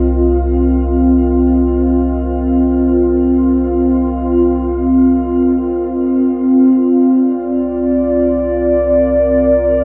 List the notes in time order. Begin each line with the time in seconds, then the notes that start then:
Already playing: C2 C4 F4 A#4 D#5
6.52 C2
6.90 D5
8.32 A#4